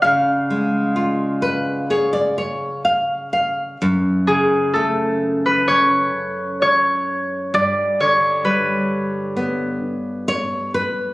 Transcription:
<<
  \new Staff \with { instrumentName = "Harp" } { \time 4/4 \key fis \minor \tempo 4 = 65 eis''2. r4 | r8 gis'8 a'8. b'16 cis''4 cis''4 | d''8 cis''8 b'4 r2 | }
  \new Staff \with { instrumentName = "Nylon-string guitar" } { \time 4/4 \key fis \minor << { r4. b'8 cis''16 d''16 cis''8 eis''8 eis''8 | r1 | r2. cis''8 b'8 | } \\ { cis8 gis8 eis'4 gis'2 | fis,8 cis8 a4 cis'2 | g,8 d8 g4 b2 | } >> }
>>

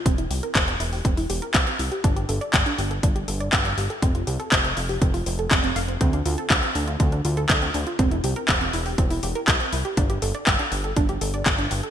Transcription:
<<
  \new Staff \with { instrumentName = "Synth arpeggio sound" } { \time 4/4 \key c \mixolydian \tempo 4 = 121 c'16 e'16 g'16 bes'16 c''16 c'16 e'16 g'16 c'16 e'16 g'16 bes'16 c''16 c'16 e'16 g'16 | d'16 g'16 a'16 d''16 g''16 d'16 g'16 a'16 d'16 g'16 a'16 d''16 g''16 d'16 g'16 a'16 | c'16 f'16 g'16 a'16 c''16 c'16 f'16 g'16 c'16 f'16 c'16 a'16 c'16 c'16 f''16 c'16 | c'16 d'16 f'16 a'16 c''16 c'16 d'16 f'16 c'16 d'16 f'16 a'16 c''16 c'16 d'16 f'16 |
c'16 e'16 g'16 bes'16 c''16 c'16 e'16 g'16 c'16 e'16 g'16 bes'16 c''16 c'16 e'16 g'16 | d'16 g'16 a'16 d''16 g''16 d'16 g'16 a'16 d'16 g'16 a'16 d''16 g''16 d'16 g'16 a'16 | }
  \new Staff \with { instrumentName = "Analog synth bass" } { \clef bass \time 4/4 \key c \mixolydian e,,8 c,8 e,,8 e,,8 e,,8 e,,8 c,8 c,8 | g,,8 g,,8 g,,8 g,,8 g,,8 g,,8 g,,8 g,,8 | f,,8 c,8 f,,8 f,,8 f,,8 f,,8 f,,8 f,,8 | d,8 d,8 d,8 d,8 d,8 d,8 d,8 d,8 |
e,,8 c,8 e,,8 e,,8 e,,8 e,,8 c,8 c,8 | g,,8 g,,8 g,,8 g,,8 g,,8 g,,8 g,,8 g,,8 | }
  \new DrumStaff \with { instrumentName = "Drums" } \drummode { \time 4/4 <hh bd>16 hh16 hho16 hh16 <hc hh bd>16 hh16 hho16 hho16 <hh bd>16 hho16 hho16 hh16 <hc hh bd>16 hh16 hho16 hh16 | <hh bd>16 hh16 hho16 hh16 <hc hh bd>16 hh16 hho16 hh16 <hh bd>16 hh16 hho16 hh16 <hc hh bd>16 hh16 hho16 hh16 | <hh bd>16 hh16 hho16 hh16 <hc hh bd>16 hh16 hho16 hho16 <hh bd>16 hho16 hho16 hh16 <hc hh bd>16 hh16 hho16 hh16 | <hh bd>16 hh16 hho16 hh16 <hc hh bd>16 hh16 hho16 hh16 <hh bd>16 hh16 hho16 hh16 <hc hh bd>16 hh16 hho16 hh16 |
<hh bd>16 hh16 hho16 hh16 <hc hh bd>16 hh16 hho16 hho16 <hh bd>16 hho16 hho16 hh16 <hc hh bd>16 hh16 hho16 hh16 | <hh bd>16 hh16 hho16 hh16 <hc hh bd>16 hh16 hho16 hh16 <hh bd>16 hh16 hho16 hh16 <hc hh bd>16 hh16 hho16 hh16 | }
>>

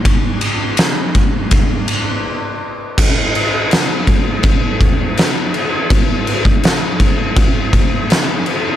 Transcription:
\new DrumStaff \with { instrumentName = "Drums" } \drummode { \time 4/4 \tempo 4 = 82 <bd cymr>8 cymr8 <cymr sn>8 <bd cymr>8 <bd cymr>8 cymr8 r4 | <cymc bd>8 cymc8 <cymc sn>8 <cymc bd>8 <cymc bd>8 <cymc bd>8 <cymc sn>8 cymc8 | <cymc bd>8 cymc16 bd16 <cymc sn>8 <cymc bd>8 <cymc bd>8 <cymc bd>8 <cymc sn>8 cymc8 | }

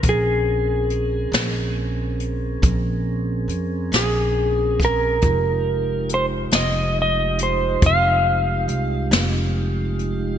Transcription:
<<
  \new Staff \with { instrumentName = "Electric slide guitar" } { \time 12/8 \key f \minor \tempo 4. = 46 aes'2 r2 r8 aes'4 bes'8~ | bes'4 c''8 ees''8 ees''8 c''8 f''2. | }
  \new Staff \with { instrumentName = "Tonewheel organ" } { \time 12/8 \key f \minor <c' des' aes' bes'>1. | <aes ees' f' g'>1. | }
  \new Staff \with { instrumentName = "Upright bass" } { \clef bass \time 12/8 \key f \minor bes,,4. bes,,4. bes,,4 f,8 bes,,4. | f,,4. f,,4. f,,4 c,8 f,,4. | }
  \new DrumStaff \with { instrumentName = "Drums" } \drummode { \time 12/8 <hh bd>4 hh8 <hh sn>4 hh8 <hh bd>4 hh8 <hh sn>4 <hh bd sn>8 | <hh bd>4 hh8 <hh sn>4 hh8 <hh bd>4 hh8 <hh sn>4 hh8 | }
>>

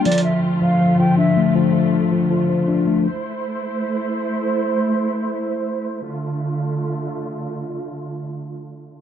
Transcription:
<<
  \new Staff \with { instrumentName = "Flute" } { \time 4/4 \key d \minor \tempo 4 = 160 d''8 e''8 r8 f''4 g''8 e''4 | r1 | r1 | r1 |
r1 | r1 | }
  \new Staff \with { instrumentName = "String section" } { \time 4/4 \key d \minor <d a f'>1~ | <d a f'>1 | <a e' c''>1~ | <a e' c''>1 |
<d a f'>1~ | <d a f'>1 | }
  \new Staff \with { instrumentName = "Tine electric piano" } { \clef bass \time 4/4 \key d \minor f4. f8 f8 f8 d'8 a8 | f4. f8 f8 f8 d'8 a8 | r1 | r1 |
r1 | r1 | }
  \new DrumStaff \with { instrumentName = "Drums" } \drummode { \time 4/4 \tuplet 3/2 { hh16 hh16 hh16 r16 r16 r16 } r4 r4 r4 | r4 r4 r4 r4 | r4 r4 r4 r4 | r4 r4 r4 r4 |
r4 r4 r4 r4 | r4 r4 r4 r4 | }
>>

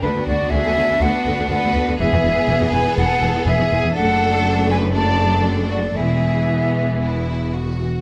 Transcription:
<<
  \new Staff \with { instrumentName = "Flute" } { \time 4/4 \key e \mixolydian \tempo 4 = 122 b'8 d''8 e''4 fis''4 fis''4 | e''4. gis''8 fis''4 e''4 | fis''4. gis''8 a''4. d''8 | e''2. r4 | }
  \new Staff \with { instrumentName = "Violin section" } { \time 4/4 \key e \mixolydian d'8 fis'8 gis'4 b'4 b'4 | gis'4. b'8 a'4 gis'4 | a'4. b'8 d''4. fis'8 | gis'2. r4 | }
  \new Staff \with { instrumentName = "Violin section" } { \time 4/4 \key e \mixolydian <d' fis'>1 | <b gis'>1 | <d' a'>2 <d' a'>2 | <e' gis'>4 b4 e'4 fis'4 | }
  \new Staff \with { instrumentName = "Viola section" } { \clef bass \time 4/4 \key e \mixolydian << { b1~ | b1 | a2 a2 | b2.~ b8 r8 | } \\ { d16 d16 d16 d16 d16 d16 d16 d16 d16 r16 d16 d16 d16 d16 d16 d16 | e16 e16 e16 e16 e16 e16 e16 e16 e16 r16 e16 e16 e16 e16 e16 e16 | a2 a2 | e2.~ e8 r8 | } >> }
  \new Staff \with { instrumentName = "Cello section" } { \clef bass \time 4/4 \key e \mixolydian d,16 d,16 d,16 d,16 d,16 d,16 d,16 d,16 d,16 r16 d,16 d,16 d,16 d,16 d,16 d,16 | e,16 e,16 e,16 e,16 e,16 e,16 e,16 e,16 e,16 r16 e,16 e,16 e,16 e,16 e,16 e,16 | fis,1 | e,2.~ e,8 r8 | }
  \new Staff \with { instrumentName = "Double bass section" } { \clef bass \time 4/4 \key e \mixolydian d,16 r16 d,16 r16 d,16 r16 d,16 r16 d,16 r16 d,16 r16 d,16 r16 d,16 r16 | e,,16 r16 e,,16 r16 e,,16 r16 e,,16 r16 e,,16 r16 e,,16 r16 e,,16 r16 e,,16 r16 | fis,,1 | e,,2.~ e,,8 r8 | }
>>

